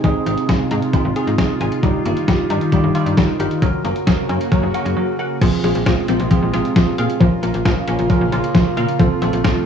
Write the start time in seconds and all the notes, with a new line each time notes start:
Already playing: C3 G#3
0.04 G#1 G#3 C4 D#4 F4 G#4, kick, closed hi-hat
0.26 G#1 C4 D#4 G#4, closed hi-hat
0.38 closed hi-hat
0.49 G#1 G#3 C4 D#4 G#4, kick, snare, closed hi-hat
0.71 G#2 C4 D#4 G#4, closed hi-hat
0.82 closed hi-hat
0.93 G#3 C4 D#4 F4, kick, closed hi-hat
1.05 G#1
1.16 C4 D#4 G#4, closed hi-hat
1.27 G#2, closed hi-hat
1.38 G#1 G#3 C4 D#4 G#4, kick, snare, closed hi-hat
1.61 G#1 C4 D#4 G#4 G#5, closed hi-hat
1.72 closed hi-hat
1.83 G1 D#3 G3 D#4 F4 G4, kick, closed hi-hat
2.05 G1 A#3 D#4 F4 G4, closed hi-hat
2.17 closed hi-hat
2.28 G1 G3 D#4 F4 G4, kick, snare, closed hi-hat
2.50 G2 D#4 F4 G4, closed hi-hat
2.62 closed hi-hat
2.73 G3 D#4 F4 G4, kick, closed hi-hat
2.84 G1
2.95 D#4 F4 G4, closed hi-hat
3.06 G2, closed hi-hat
3.17 G1 G3 D#4 F4 A#4, kick, snare, closed hi-hat
3.40 G1 D#4 F4 G4 A#4, closed hi-hat
3.51 closed hi-hat
3.62 F#1 C#3 F#3 A#3 C#4 F#4 A#4, kick, closed hi-hat
3.85 F#1 A#3 C#4 F#4 A#4, closed hi-hat
3.96 closed hi-hat
4.07 F#1 F#3 C#4 F#4 A#4, kick, snare, closed hi-hat
4.29 F#2 C#4 F#4 A#4, closed hi-hat
4.41 closed hi-hat
4.52 F#3 C#4 F#4 A#4, kick, closed hi-hat
4.63 F#1
4.74 C#4 F#4 A#4, closed hi-hat
4.85 F#2, closed hi-hat
4.96 F#3 C#4 F#4 A#4
5.19 C#4 F#4 A#4 F#5
5.41 A#1 C3 F3 G#3 C4 F4 G#4, kick, closed hi-hat, crash
5.64 A#1 G#3 C4 F4 G#4, closed hi-hat
5.75 A#1, closed hi-hat
5.86 A#1 F3 C4 F4 G#4, kick, snare, closed hi-hat
6.08 A#1 C4 F4 A#4, closed hi-hat
6.20 A#1, closed hi-hat
6.31 F3 C4 F4 G#4, kick, closed hi-hat
6.42 A#1
6.53 A#1 C4 F4 G#4, closed hi-hat
6.65 closed hi-hat
6.76 A#1 F3 C4 F4 G#4, kick, snare, closed hi-hat
6.98 A#2 C4 F4 G#4 F5, closed hi-hat
7.09 closed hi-hat
7.20 A#1 C#3 F3 A#3 C#4 F4 A#4, kick, closed hi-hat
7.43 A#1 A#3 C#4 F4 A#4, closed hi-hat
7.54 A#1, closed hi-hat
7.65 A#1 F3 C#4 F4 A#4, kick, snare, closed hi-hat
7.88 A#1 C#4 F4 A#4, closed hi-hat
7.99 A#1, closed hi-hat
8.10 F3 C#4 F4 A#4, kick, closed hi-hat
8.21 A#1
8.32 A#1 C#4 F4 A#4, closed hi-hat
8.44 closed hi-hat
8.55 A#1 F3 C#4 F4 A#4, kick, snare, closed hi-hat
8.77 A#2 C#4 F4 A#4 F5, closed hi-hat
8.89 closed hi-hat
9.00 A#1 C3 F3 A3 C4 F4 A4, kick, closed hi-hat
9.22 A#1 A3 C4 F4 A4, closed hi-hat
9.33 A#1, closed hi-hat
9.44 A#1 F3 C4 F4 A4, kick, snare, closed hi-hat